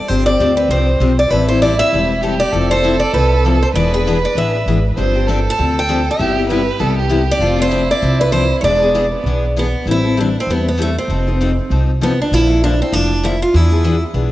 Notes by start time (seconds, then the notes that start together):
0.08 G1 C3 F3 C4 D4 G4 C5
0.26 C4 D4 G4 D5
0.39 D2 C3 F3 C4 D4 G4
0.57 B4
0.69 C2 C3 F3 C4 D4 G4 C5
1.00 B1 C3 F3 C4 D4 G4
1.19 D5
1.30 A1 E3 G3 C4 E4 A4 B4
1.49 C4 E4 A4 C5
1.62 E3 G3 C4 E4 A4 D5
1.79 E5
1.93 E1 E3 G3 C4 E4 A4
2.22 E3 G3 C4 E4 G4 A4
2.40 D5
2.52 F1 F3 C4 E4 A4
2.71 C4 E4 A4 C5
2.84 F3 C4 E4 A4
3.00 D5
3.13 C2 F3 C4 E4 A4 B4
3.45 F3 C4 E4 A4
3.63 C5
3.72 E1 E3 B3 B4 D5
3.77 D4 G#4
3.93 B3 D4 G#4 B4
4.07 E3 B3 D4 G#4
4.25 D5
4.35 A1 E3 B3 D4 G#4 E5
4.66 G#1 E3 B3 D4 G#4
4.97 G1 C3 F3 C4 D4 G4 C5
5.15 C4 D4 G4
5.27 C3 F3 C4 D4 G4 A4
5.50 A5
5.58 D2 C3 F3 C4 D4 G4
5.79 G5
5.88 C3 F3 C4 D4 G4
6.11 E5
6.19 G1 C3 G3 B3 E4 G4
6.37 B3 E4 G4
6.49 C3 G3 B3 E4 G4 B4
6.79 C2 C3 G3 B3 E4 G4 A4
6.99 G4
7.09 C3 G3 B3 E4 G4
7.31 D5
7.39 F1 F3 C4 D4 F4 A4
7.58 C4 D4 A4 C5
7.69 F3 C4 D4 E4 A4
7.91 D5
8.02 C2 F3 C4 D4 A4
8.21 B4
8.32 F3 C4 D4 A4 C5
8.61 E1 E3 B3 D4 C#5 D5
8.65 G#4
8.82 B3 D4 G#4
8.94 E3 B3 D4 E4 G#4
9.12 B3
9.24 B1 E3 B3 D4 G#4
9.56 E3 B3 D4 G#4
9.86 A1 E3 G3 C4 E4 A4
9.91 E4
10.05 C4 E4 A4
10.17 E3 G3 C4 D4 E4 A4
10.40 C4
10.47 E2 E3 G3 B3 C4 E4
10.51 A4
10.68 B3
10.78 E3 G3 C4 E4 A4
10.82 A3
10.98 C4
11.08 F1 F3 C4 D#4 A4
11.27 C4 D#4 A4
11.41 F3 C4 D#4 A4
11.70 C2 F3 C4 D#4 A4
12.01 F3 B3 C4 D#4 A4
12.22 D4
12.31 A#1 D3 F3 A#3 D4 E4 A4
12.50 A#3 D4 A4
12.64 D3 F3 A#3 D4 A4
12.82 C4
12.92 F1 D3 F3 A#3 D4 A4
13.23 D3 F3 A#3 D4 E4 A4
13.42 F4
13.54 E2 E3 B3 D4 E4 G#4
13.72 B3 D4 G#4
13.84 E3 B3 D4 G#4
14.14 B1 E3 B3 D4 G#4